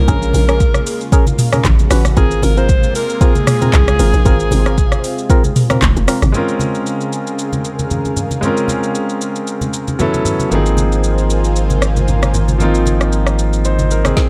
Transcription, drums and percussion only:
0.08 kick loud
0.08 low conga medium
0.08 shaker medium
0.22 shaker medium
0.33 open hi-hat soft
0.33 high conga medium
0.33 shaker medium
0.49 cross-stick loud
0.49 shaker soft
0.60 kick loud
0.60 shaker medium
0.74 cross-stick medium
0.74 high conga medium
0.74 shaker soft
0.87 open hi-hat medium
0.87 shaker medium
1.01 shaker medium
1.12 kick loud
1.12 shaker medium
1.27 high conga medium
1.27 shaker medium
1.39 mid tom medium
1.39 open hi-hat medium
1.39 shaker medium
1.53 cross-stick loud
1.53 mid tom medium
1.53 high conga medium
1.53 shaker medium
1.65 kick loud
1.65 clap loud
1.65 high conga medium
1.65 low conga medium
1.65 shaker medium
1.79 high conga medium
1.79 shaker soft
1.91 cross-stick loud
1.91 open hi-hat medium
1.91 shaker loud
2.05 cross-stick medium
2.05 high conga medium
2.05 shaker medium
2.17 kick loud
2.17 low conga medium
2.17 shaker medium
2.31 shaker medium
2.42 open hi-hat medium
2.42 high conga medium
2.42 shaker medium
2.57 shaker soft
2.69 kick loud
2.69 shaker medium
2.83 high conga medium
2.83 shaker soft
2.95 open hi-hat medium
2.95 shaker medium
3.10 shaker medium
3.21 kick loud
3.21 shaker medium
3.35 high conga medium
3.35 shaker medium
3.47 cross-stick loud
3.47 mid tom medium
3.47 open hi-hat medium
3.47 shaker medium
3.62 mid tom medium
3.62 high conga medium
3.62 shaker medium
3.73 kick medium
3.73 clap loud
3.73 high conga medium
3.73 low conga medium
3.73 shaker medium
3.88 cross-stick loud
3.88 high conga medium
3.88 shaker medium
3.99 open hi-hat medium
3.99 shaker loud
4.14 high conga medium
4.14 shaker medium
4.25 kick loud
4.25 low conga medium
4.25 shaker medium
4.40 shaker medium
4.51 open hi-hat soft
4.51 high conga medium
4.51 shaker medium
4.66 cross-stick medium
4.66 shaker soft
4.78 kick loud
4.78 shaker medium
4.92 cross-stick medium
4.92 high conga medium
4.92 shaker soft
5.04 open hi-hat medium
5.04 shaker medium
5.18 shaker medium
5.30 kick loud
5.30 shaker medium
5.44 high conga medium
5.44 shaker medium
5.56 mid tom medium
5.56 open hi-hat medium
5.56 shaker medium
5.70 cross-stick loud
5.70 mid tom medium
5.70 high conga medium
5.70 shaker medium
5.82 kick medium
5.82 clap loud
5.82 high conga medium
5.82 low conga medium
5.82 shaker medium
5.96 high conga medium
5.96 shaker medium
6.08 cross-stick loud
6.08 open hi-hat medium
6.08 shaker loud
6.22 cross-stick medium
6.22 high conga medium
6.22 shaker medium
6.34 low conga medium
6.34 shaker medium
6.49 shaker medium
6.60 high conga medium
6.60 shaker medium
6.75 shaker soft
6.86 shaker medium
7.01 shaker soft
7.13 shaker medium
7.27 shaker soft
7.39 shaker medium
7.53 high conga medium
7.53 shaker soft
7.65 shaker medium
7.79 high conga medium
7.79 shaker medium
7.91 high conga medium
7.91 low conga medium
7.91 shaker medium
8.05 high conga medium
8.05 shaker soft
8.16 low conga medium
8.16 shaker medium
8.31 high conga medium
8.31 shaker medium
8.43 low conga medium
8.43 shaker medium
8.57 shaker medium
8.68 high conga medium
8.68 shaker medium
8.83 shaker soft
8.95 shaker medium
9.09 shaker soft
9.21 shaker medium
9.36 shaker soft
9.47 shaker medium
9.61 high conga medium
9.61 shaker soft
9.73 shaker medium
9.88 high conga medium
9.88 shaker medium
9.99 high conga medium
9.99 low conga medium
9.99 shaker medium
10.14 high conga medium
10.14 shaker soft
10.25 low conga medium
10.25 shaker loud
10.40 high conga medium
10.40 shaker medium
10.51 low conga medium
10.51 shaker medium
10.66 shaker medium
10.77 high conga medium
10.77 shaker medium
10.92 shaker soft
11.04 shaker medium
11.18 shaker soft
11.30 shaker medium
11.44 shaker medium
11.56 shaker medium
11.70 high conga medium
11.70 shaker medium
11.82 cross-stick medium
11.82 shaker medium
11.96 high conga medium
11.96 shaker medium
12.08 high conga medium
12.08 low conga medium
12.08 shaker medium
12.23 cross-stick medium
12.23 high conga medium
12.23 shaker soft
12.34 low conga medium
12.34 shaker loud
12.48 high conga medium
12.48 shaker medium
12.60 low conga medium
12.60 shaker medium
12.75 shaker medium
12.86 high conga medium
12.86 shaker medium
13.01 cross-stick medium
13.01 shaker soft
13.12 shaker medium
13.27 cross-stick medium
13.27 shaker soft
13.39 shaker medium
13.53 shaker medium
13.65 shaker medium
13.79 high conga medium
13.79 shaker medium
13.91 shaker medium
14.05 cross-stick loud
14.05 high conga medium
14.05 shaker medium
14.17 kick loud
14.17 snare medium

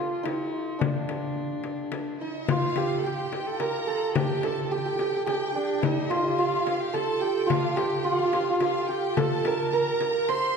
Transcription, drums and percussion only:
0.26 frame drum medium
0.81 frame drum medium
1.09 frame drum medium
1.64 frame drum medium
1.92 frame drum medium
2.48 frame drum medium
2.76 frame drum medium
3.33 frame drum medium
3.60 frame drum medium
4.15 frame drum medium
4.43 frame drum medium
4.99 frame drum medium
5.27 frame drum medium
5.83 frame drum medium
6.11 frame drum medium
6.67 frame drum medium
6.94 frame drum medium
7.50 frame drum medium
7.77 frame drum medium
8.33 frame drum medium
8.60 frame drum medium
9.17 frame drum medium
9.45 frame drum medium
10.01 frame drum medium
10.29 frame drum medium

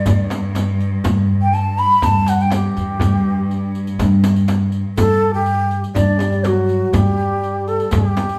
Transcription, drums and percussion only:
0.06 riq medium
0.06 darbuka dum loud
0.06 frame drum medium
0.30 riq medium
0.30 darbuka tek medium
0.30 frame drum medium
0.55 riq soft
0.55 darbuka tek medium
0.55 frame drum medium
0.80 riq soft
0.92 darbuka ka soft
1.04 riq medium
1.04 darbuka dum medium
1.04 frame drum medium
1.53 riq soft
1.53 darbuka ka soft
1.78 riq soft
1.90 riq soft
1.90 darbuka ka soft
2.02 riq medium
2.02 frame drum medium
2.02 darbuka dum medium
2.26 riq medium
2.26 darbuka tek medium
2.40 riq soft
2.50 riq soft
2.50 darbuka tek medium
2.50 frame drum medium
2.77 riq soft
2.88 darbuka ka soft
3.00 riq medium
3.00 darbuka dum loud
3.00 frame drum medium
3.50 riq soft
3.50 darbuka ka soft
3.75 riq soft
3.87 riq soft
3.87 darbuka ka soft
3.99 riq medium
3.99 frame drum medium
3.99 darbuka dum medium
4.24 riq medium
4.24 darbuka tek medium
4.24 frame drum medium
4.36 riq soft
4.36 darbuka ka soft
4.48 riq medium
4.48 darbuka tek medium
4.48 frame drum medium
4.72 riq soft
4.97 riq medium
4.97 darbuka dum loud
4.97 frame drum medium
5.46 riq soft
5.46 darbuka ka soft
5.71 riq soft
5.83 riq soft
5.83 darbuka ka soft
5.95 riq medium
5.95 darbuka dum medium
5.95 frame drum medium
6.19 riq soft
6.19 darbuka tek medium
6.19 frame drum medium
6.32 riq soft
6.44 riq soft
6.44 darbuka tek medium
6.44 frame drum medium
6.69 riq soft
6.69 darbuka ka soft
6.81 darbuka ka soft
6.93 riq medium
6.93 darbuka dum medium
6.93 frame drum medium
7.43 riq soft
7.68 riq soft
7.80 riq soft
7.80 darbuka ka soft
7.91 riq medium
7.91 darbuka dum medium
7.91 frame drum medium
8.17 riq soft
8.17 darbuka tek medium
8.17 frame drum medium
8.29 riq soft

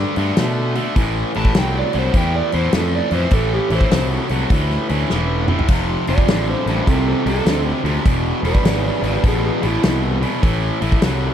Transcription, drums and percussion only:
0.16 open hi-hat medium
0.36 snare loud
0.36 open hi-hat medium
0.75 open hi-hat soft
0.96 kick medium
0.96 open hi-hat medium
1.34 open hi-hat medium
1.45 kick medium
1.55 snare loud
1.55 open hi-hat medium
1.93 open hi-hat medium
2.14 kick loud
2.14 open hi-hat medium
2.52 open hi-hat medium
2.72 snare loud
2.72 open hi-hat medium
3.11 open hi-hat medium
3.31 kick loud
3.31 open hi-hat medium
3.70 open hi-hat medium
3.81 kick medium
3.91 snare loud
3.91 open hi-hat medium
4.29 open hi-hat medium
4.50 kick loud
4.50 open hi-hat medium
4.70 snare soft
4.89 open hi-hat medium
5.10 snare medium
5.48 mid tom medium
5.59 floor tom medium
5.68 kick loud
5.68 open hi-hat medium
5.68 crash medium
6.07 open hi-hat medium
6.18 kick medium
6.28 snare loud
6.28 open hi-hat medium
6.67 open hi-hat soft
6.87 kick loud
6.87 open hi-hat medium
7.26 open hi-hat medium
7.46 snare loud
7.46 open hi-hat medium
7.86 open hi-hat medium
8.06 kick loud
8.06 open hi-hat medium
8.45 open hi-hat medium
8.55 kick medium
8.65 snare loud
8.65 open hi-hat medium
9.04 open hi-hat medium
9.24 kick loud
9.24 open hi-hat medium
9.63 open hi-hat medium
9.83 snare loud
9.83 open hi-hat medium
10.22 open hi-hat medium
10.43 kick loud
10.43 open hi-hat medium
10.82 open hi-hat medium
10.92 kick medium
11.02 snare loud
11.02 open hi-hat medium

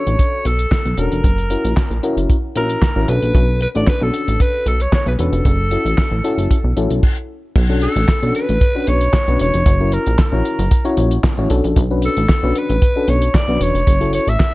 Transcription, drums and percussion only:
0.07 closed hi-hat medium
0.19 kick loud
0.19 closed hi-hat medium
0.45 closed hi-hat medium
0.59 closed hi-hat medium
0.71 kick loud
0.71 snare loud
0.71 clap medium
0.86 closed hi-hat soft
0.98 closed hi-hat medium
1.12 closed hi-hat soft
1.24 kick loud
1.24 closed hi-hat medium
1.38 closed hi-hat soft
1.50 closed hi-hat medium
1.65 closed hi-hat medium
1.77 kick loud
1.77 snare loud
1.77 clap medium
1.91 closed hi-hat soft
2.03 closed hi-hat medium
2.17 closed hi-hat medium
2.30 kick loud
2.30 closed hi-hat medium
2.56 closed hi-hat medium
2.69 closed hi-hat medium
2.82 kick loud
2.82 snare loud
2.82 clap medium
3.08 closed hi-hat medium
3.22 closed hi-hat soft
3.35 kick loud
3.35 closed hi-hat medium
3.61 closed hi-hat medium
3.75 closed hi-hat soft
3.87 kick loud
3.87 snare loud
3.87 clap medium
4.14 closed hi-hat medium
4.28 closed hi-hat medium
4.40 kick loud
4.40 closed hi-hat medium
4.66 closed hi-hat medium
4.80 closed hi-hat medium
4.92 kick loud
4.92 snare loud
4.92 clap medium
5.07 closed hi-hat soft
5.19 closed hi-hat medium
5.33 closed hi-hat medium
5.45 kick loud
5.45 closed hi-hat medium
5.71 closed hi-hat medium
5.86 closed hi-hat soft
5.98 kick loud
5.98 snare loud
5.98 clap medium
6.24 closed hi-hat medium
6.38 closed hi-hat medium
6.51 kick loud
6.51 closed hi-hat medium
6.77 closed hi-hat medium
6.90 closed hi-hat medium
7.03 kick loud
7.03 crash medium
7.56 kick loud
7.56 crash loud
7.81 closed hi-hat medium
7.96 closed hi-hat medium
8.08 kick loud
8.08 snare loud
8.08 clap medium
8.23 closed hi-hat soft
8.35 closed hi-hat medium
8.49 closed hi-hat medium
8.61 kick loud
8.61 closed hi-hat medium
8.87 closed hi-hat medium
9.01 closed hi-hat medium
9.13 kick loud
9.13 snare loud
9.13 clap loud
9.27 closed hi-hat soft
9.39 closed hi-hat medium
9.54 closed hi-hat medium
9.66 kick loud
9.66 closed hi-hat medium
9.92 closed hi-hat medium
10.06 closed hi-hat medium
10.18 kick loud
10.18 snare loud
10.18 clap medium
10.45 closed hi-hat medium
10.59 closed hi-hat medium
10.71 kick loud
10.71 closed hi-hat medium
10.85 closed hi-hat soft
10.97 closed hi-hat medium
11.11 closed hi-hat medium
11.24 kick loud
11.24 snare loud
11.24 clap medium
11.50 closed hi-hat medium
11.64 closed hi-hat soft
11.76 kick loud
11.76 closed hi-hat medium
12.02 closed hi-hat medium
12.17 closed hi-hat medium
12.29 kick loud
12.29 snare loud
12.29 clap medium
12.55 closed hi-hat medium
12.70 closed hi-hat medium
12.82 kick loud
12.82 closed hi-hat medium
13.08 closed hi-hat medium
13.22 closed hi-hat medium
13.34 kick loud
13.34 snare loud
13.34 clap loud
13.61 closed hi-hat medium
13.75 closed hi-hat medium
13.87 kick loud
13.87 closed hi-hat medium
14.01 closed hi-hat soft
14.13 closed hi-hat medium
14.28 closed hi-hat medium
14.40 kick loud
14.40 snare loud
14.40 clap medium

